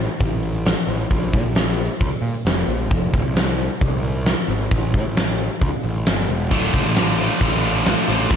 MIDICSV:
0, 0, Header, 1, 5, 480
1, 0, Start_track
1, 0, Key_signature, -1, "minor"
1, 0, Tempo, 450113
1, 1178, Time_signature, 4, 2, 24, 8
1, 8918, End_track
2, 0, Start_track
2, 0, Title_t, "Clean electric guitar"
2, 0, Program_c, 0, 27
2, 6942, Note_on_c, 0, 38, 81
2, 6951, Note_on_c, 0, 45, 100
2, 6958, Note_on_c, 0, 50, 76
2, 6965, Note_on_c, 0, 57, 100
2, 6972, Note_on_c, 0, 65, 93
2, 7180, Note_off_c, 0, 65, 0
2, 7184, Note_on_c, 0, 65, 72
2, 7186, Note_off_c, 0, 57, 0
2, 7199, Note_on_c, 0, 57, 61
2, 7203, Note_off_c, 0, 50, 0
2, 7216, Note_on_c, 0, 50, 60
2, 7402, Note_off_c, 0, 45, 0
2, 7415, Note_on_c, 0, 45, 59
2, 7418, Note_off_c, 0, 50, 0
2, 7422, Note_off_c, 0, 38, 0
2, 7427, Note_off_c, 0, 57, 0
2, 7431, Note_on_c, 0, 50, 58
2, 7440, Note_on_c, 0, 57, 67
2, 7446, Note_off_c, 0, 65, 0
2, 7450, Note_on_c, 0, 65, 76
2, 7655, Note_off_c, 0, 65, 0
2, 7659, Note_on_c, 0, 65, 73
2, 7660, Note_off_c, 0, 57, 0
2, 7673, Note_on_c, 0, 57, 71
2, 7677, Note_off_c, 0, 50, 0
2, 7690, Note_on_c, 0, 50, 65
2, 7892, Note_off_c, 0, 45, 0
2, 7898, Note_on_c, 0, 38, 77
2, 7903, Note_off_c, 0, 50, 0
2, 7905, Note_on_c, 0, 45, 83
2, 7909, Note_off_c, 0, 57, 0
2, 7916, Note_on_c, 0, 50, 87
2, 7922, Note_on_c, 0, 57, 82
2, 7925, Note_off_c, 0, 65, 0
2, 7929, Note_on_c, 0, 65, 99
2, 8363, Note_off_c, 0, 45, 0
2, 8371, Note_off_c, 0, 50, 0
2, 8376, Note_on_c, 0, 45, 73
2, 8382, Note_off_c, 0, 57, 0
2, 8384, Note_on_c, 0, 50, 67
2, 8395, Note_on_c, 0, 57, 76
2, 8401, Note_off_c, 0, 65, 0
2, 8406, Note_on_c, 0, 65, 68
2, 8609, Note_off_c, 0, 65, 0
2, 8613, Note_on_c, 0, 65, 69
2, 8615, Note_off_c, 0, 57, 0
2, 8616, Note_off_c, 0, 38, 0
2, 8627, Note_on_c, 0, 57, 69
2, 8631, Note_off_c, 0, 50, 0
2, 8644, Note_on_c, 0, 50, 59
2, 8840, Note_off_c, 0, 45, 0
2, 8847, Note_off_c, 0, 57, 0
2, 8855, Note_off_c, 0, 50, 0
2, 8857, Note_on_c, 0, 46, 84
2, 8864, Note_on_c, 0, 53, 95
2, 8872, Note_on_c, 0, 58, 101
2, 8875, Note_on_c, 0, 61, 107
2, 8879, Note_off_c, 0, 65, 0
2, 8883, Note_on_c, 0, 70, 91
2, 8884, Note_on_c, 0, 65, 97
2, 8918, Note_off_c, 0, 46, 0
2, 8918, Note_off_c, 0, 53, 0
2, 8918, Note_off_c, 0, 58, 0
2, 8918, Note_off_c, 0, 61, 0
2, 8918, Note_off_c, 0, 65, 0
2, 8918, Note_off_c, 0, 70, 0
2, 8918, End_track
3, 0, Start_track
3, 0, Title_t, "Distorted electric guitar"
3, 0, Program_c, 1, 30
3, 7194, Note_on_c, 1, 38, 74
3, 7200, Note_on_c, 1, 45, 76
3, 7413, Note_off_c, 1, 38, 0
3, 7419, Note_off_c, 1, 45, 0
3, 7426, Note_on_c, 1, 38, 83
3, 7657, Note_off_c, 1, 38, 0
3, 7670, Note_on_c, 1, 38, 84
3, 7674, Note_on_c, 1, 45, 98
3, 7891, Note_off_c, 1, 38, 0
3, 7896, Note_off_c, 1, 45, 0
3, 8147, Note_on_c, 1, 38, 94
3, 8151, Note_on_c, 1, 45, 95
3, 8159, Note_on_c, 1, 50, 83
3, 8373, Note_off_c, 1, 38, 0
3, 8378, Note_off_c, 1, 45, 0
3, 8386, Note_on_c, 1, 38, 68
3, 8387, Note_off_c, 1, 50, 0
3, 8618, Note_off_c, 1, 38, 0
3, 8630, Note_on_c, 1, 38, 76
3, 8634, Note_on_c, 1, 45, 80
3, 8848, Note_off_c, 1, 38, 0
3, 8850, Note_off_c, 1, 45, 0
3, 8918, End_track
4, 0, Start_track
4, 0, Title_t, "Picked electric bass"
4, 0, Program_c, 2, 34
4, 220, Note_on_c, 2, 33, 89
4, 776, Note_off_c, 2, 33, 0
4, 928, Note_on_c, 2, 33, 74
4, 1118, Note_off_c, 2, 33, 0
4, 1178, Note_on_c, 2, 34, 98
4, 1419, Note_on_c, 2, 46, 72
4, 1435, Note_off_c, 2, 34, 0
4, 1512, Note_off_c, 2, 46, 0
4, 1532, Note_on_c, 2, 34, 76
4, 2000, Note_off_c, 2, 34, 0
4, 2138, Note_on_c, 2, 37, 102
4, 2232, Note_off_c, 2, 37, 0
4, 2364, Note_on_c, 2, 46, 82
4, 2464, Note_off_c, 2, 46, 0
4, 2610, Note_on_c, 2, 29, 82
4, 2801, Note_off_c, 2, 29, 0
4, 2855, Note_on_c, 2, 34, 88
4, 3104, Note_off_c, 2, 34, 0
4, 3104, Note_on_c, 2, 29, 104
4, 3289, Note_off_c, 2, 29, 0
4, 3340, Note_on_c, 2, 26, 92
4, 3435, Note_off_c, 2, 26, 0
4, 3454, Note_on_c, 2, 36, 80
4, 3923, Note_off_c, 2, 36, 0
4, 4063, Note_on_c, 2, 36, 88
4, 4621, Note_off_c, 2, 36, 0
4, 4778, Note_on_c, 2, 32, 82
4, 4967, Note_off_c, 2, 32, 0
4, 5025, Note_on_c, 2, 33, 99
4, 5268, Note_on_c, 2, 45, 77
4, 5284, Note_off_c, 2, 33, 0
4, 5360, Note_off_c, 2, 45, 0
4, 5380, Note_on_c, 2, 33, 67
4, 5846, Note_off_c, 2, 33, 0
4, 5985, Note_on_c, 2, 37, 95
4, 6078, Note_off_c, 2, 37, 0
4, 6228, Note_on_c, 2, 33, 66
4, 6442, Note_off_c, 2, 33, 0
4, 6474, Note_on_c, 2, 31, 72
4, 6685, Note_off_c, 2, 31, 0
4, 6707, Note_on_c, 2, 28, 77
4, 6947, Note_off_c, 2, 28, 0
4, 6947, Note_on_c, 2, 26, 88
4, 7131, Note_off_c, 2, 26, 0
4, 7186, Note_on_c, 2, 37, 89
4, 7277, Note_off_c, 2, 37, 0
4, 7299, Note_on_c, 2, 33, 80
4, 7763, Note_off_c, 2, 33, 0
4, 7901, Note_on_c, 2, 33, 95
4, 8455, Note_off_c, 2, 33, 0
4, 8620, Note_on_c, 2, 33, 84
4, 8804, Note_off_c, 2, 33, 0
4, 8854, Note_on_c, 2, 34, 102
4, 8918, Note_off_c, 2, 34, 0
4, 8918, End_track
5, 0, Start_track
5, 0, Title_t, "Drums"
5, 210, Note_on_c, 9, 46, 62
5, 219, Note_on_c, 9, 36, 90
5, 317, Note_off_c, 9, 46, 0
5, 325, Note_off_c, 9, 36, 0
5, 457, Note_on_c, 9, 46, 58
5, 563, Note_off_c, 9, 46, 0
5, 701, Note_on_c, 9, 46, 75
5, 709, Note_on_c, 9, 38, 108
5, 807, Note_off_c, 9, 46, 0
5, 816, Note_off_c, 9, 38, 0
5, 943, Note_on_c, 9, 46, 56
5, 1050, Note_off_c, 9, 46, 0
5, 1182, Note_on_c, 9, 36, 96
5, 1183, Note_on_c, 9, 46, 77
5, 1289, Note_off_c, 9, 36, 0
5, 1289, Note_off_c, 9, 46, 0
5, 1423, Note_on_c, 9, 36, 86
5, 1425, Note_on_c, 9, 46, 53
5, 1530, Note_off_c, 9, 36, 0
5, 1532, Note_off_c, 9, 46, 0
5, 1658, Note_on_c, 9, 46, 74
5, 1666, Note_on_c, 9, 38, 107
5, 1764, Note_off_c, 9, 46, 0
5, 1773, Note_off_c, 9, 38, 0
5, 1900, Note_on_c, 9, 46, 59
5, 2006, Note_off_c, 9, 46, 0
5, 2139, Note_on_c, 9, 46, 59
5, 2142, Note_on_c, 9, 36, 89
5, 2246, Note_off_c, 9, 46, 0
5, 2249, Note_off_c, 9, 36, 0
5, 2385, Note_on_c, 9, 46, 55
5, 2492, Note_off_c, 9, 46, 0
5, 2623, Note_on_c, 9, 46, 62
5, 2631, Note_on_c, 9, 38, 108
5, 2730, Note_off_c, 9, 46, 0
5, 2738, Note_off_c, 9, 38, 0
5, 2865, Note_on_c, 9, 46, 54
5, 2972, Note_off_c, 9, 46, 0
5, 3104, Note_on_c, 9, 46, 66
5, 3105, Note_on_c, 9, 36, 104
5, 3211, Note_off_c, 9, 36, 0
5, 3211, Note_off_c, 9, 46, 0
5, 3345, Note_on_c, 9, 36, 85
5, 3348, Note_on_c, 9, 46, 51
5, 3451, Note_off_c, 9, 36, 0
5, 3455, Note_off_c, 9, 46, 0
5, 3584, Note_on_c, 9, 46, 70
5, 3592, Note_on_c, 9, 38, 104
5, 3690, Note_off_c, 9, 46, 0
5, 3699, Note_off_c, 9, 38, 0
5, 3820, Note_on_c, 9, 46, 58
5, 3926, Note_off_c, 9, 46, 0
5, 4067, Note_on_c, 9, 36, 105
5, 4068, Note_on_c, 9, 46, 61
5, 4174, Note_off_c, 9, 36, 0
5, 4174, Note_off_c, 9, 46, 0
5, 4307, Note_on_c, 9, 46, 57
5, 4413, Note_off_c, 9, 46, 0
5, 4539, Note_on_c, 9, 46, 66
5, 4548, Note_on_c, 9, 38, 102
5, 4646, Note_off_c, 9, 46, 0
5, 4654, Note_off_c, 9, 38, 0
5, 4781, Note_on_c, 9, 46, 63
5, 4888, Note_off_c, 9, 46, 0
5, 5024, Note_on_c, 9, 46, 70
5, 5027, Note_on_c, 9, 36, 106
5, 5131, Note_off_c, 9, 46, 0
5, 5133, Note_off_c, 9, 36, 0
5, 5268, Note_on_c, 9, 36, 78
5, 5269, Note_on_c, 9, 46, 56
5, 5375, Note_off_c, 9, 36, 0
5, 5376, Note_off_c, 9, 46, 0
5, 5508, Note_on_c, 9, 46, 77
5, 5517, Note_on_c, 9, 38, 106
5, 5615, Note_off_c, 9, 46, 0
5, 5623, Note_off_c, 9, 38, 0
5, 5748, Note_on_c, 9, 46, 58
5, 5855, Note_off_c, 9, 46, 0
5, 5988, Note_on_c, 9, 36, 85
5, 5989, Note_on_c, 9, 46, 61
5, 6094, Note_off_c, 9, 36, 0
5, 6095, Note_off_c, 9, 46, 0
5, 6222, Note_on_c, 9, 46, 58
5, 6329, Note_off_c, 9, 46, 0
5, 6462, Note_on_c, 9, 46, 64
5, 6471, Note_on_c, 9, 38, 99
5, 6569, Note_off_c, 9, 46, 0
5, 6577, Note_off_c, 9, 38, 0
5, 6703, Note_on_c, 9, 46, 54
5, 6810, Note_off_c, 9, 46, 0
5, 6942, Note_on_c, 9, 46, 67
5, 6946, Note_on_c, 9, 36, 102
5, 7048, Note_off_c, 9, 46, 0
5, 7052, Note_off_c, 9, 36, 0
5, 7184, Note_on_c, 9, 46, 54
5, 7185, Note_on_c, 9, 36, 84
5, 7291, Note_off_c, 9, 46, 0
5, 7292, Note_off_c, 9, 36, 0
5, 7421, Note_on_c, 9, 46, 68
5, 7429, Note_on_c, 9, 38, 113
5, 7527, Note_off_c, 9, 46, 0
5, 7536, Note_off_c, 9, 38, 0
5, 7661, Note_on_c, 9, 46, 58
5, 7768, Note_off_c, 9, 46, 0
5, 7898, Note_on_c, 9, 46, 54
5, 7902, Note_on_c, 9, 36, 102
5, 8004, Note_off_c, 9, 46, 0
5, 8009, Note_off_c, 9, 36, 0
5, 8137, Note_on_c, 9, 46, 56
5, 8244, Note_off_c, 9, 46, 0
5, 8378, Note_on_c, 9, 46, 70
5, 8386, Note_on_c, 9, 38, 112
5, 8484, Note_off_c, 9, 46, 0
5, 8493, Note_off_c, 9, 38, 0
5, 8622, Note_on_c, 9, 46, 59
5, 8728, Note_off_c, 9, 46, 0
5, 8859, Note_on_c, 9, 36, 111
5, 8859, Note_on_c, 9, 46, 75
5, 8918, Note_off_c, 9, 36, 0
5, 8918, Note_off_c, 9, 46, 0
5, 8918, End_track
0, 0, End_of_file